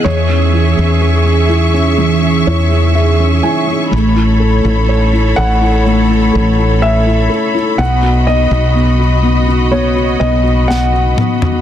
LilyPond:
<<
  \new Staff \with { instrumentName = "Grand piano" } { \time 4/4 \key cis \minor \tempo 4 = 62 cis''4. r2 r8 | r4. fis''4. e''4 | fis''8 dis''4. cis''8 dis''8 fis''4 | }
  \new Staff \with { instrumentName = "String section" } { \time 4/4 \key cis \minor << { cis'''1 | b''1~ | b''1 | } \\ { <gis' e''>1 | <a' cis''>1 | <fis' dis''>1 | } >> }
  \new Staff \with { instrumentName = "Felt piano" } { \time 4/4 \key cis \minor << { r2 r8 cis''8 e''8 gis''8 | r1 | r1 | } \\ { e16 cis'16 e'16 cis'16 gis'16 cis'16 e'16 cis'16 e16 cis'16 e'16 cis'16 gis'16 cis'16 e'16 cis'16 | a16 e'16 a'16 e'16 cis''16 e'16 a'16 e'16 a16 e'16 a'16 e'16 cis''16 e'16 a'16 e'16 | b16 fis'16 b16 fis'16 b16 fis'16 b16 fis'16 b16 fis'16 b16 fis'16 b16 fis'16 b16 fis'16 | } >> }
  \new Staff \with { instrumentName = "Fretless electric bass" } { \clef bass \time 4/4 \key cis \minor e,8. e,4.~ e,16 e,4 r8 | a,,8. a,,8. a,,4 a,,4 r8 | b,,8. b,,4.~ b,,16 b,,4 r8 | }
  \new DrumStaff \with { instrumentName = "Drums" } \drummode { \time 4/4 r4 r4 r4 r4 | r4 r4 r4 r4 | r4 r4 r4 sn8 toml16 tomfh16 | }
>>